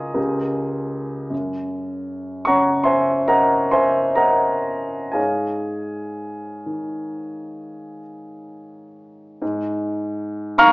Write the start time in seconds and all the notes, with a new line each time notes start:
Already playing: C#2 F4 A#4 D#5 F5 G#5 A#5 C6 C#6 D#6 F6
0.14 C#2 G4 A#4
1.30 F#2
2.45 C#3 C#5 F#5 A#5 C#6
2.84 C5 E5 G#5 C6
3.28 A#4 D#5 F#5 A#5
3.71 C5 E5 G#5 C6
4.15 A#4 D#5 F#5 A#5
5.12 G#2 G#4 C#5 F5 G#5
6.66 D#3
9.42 G#2
10.58 D#3 F5 A#5 C#6 F6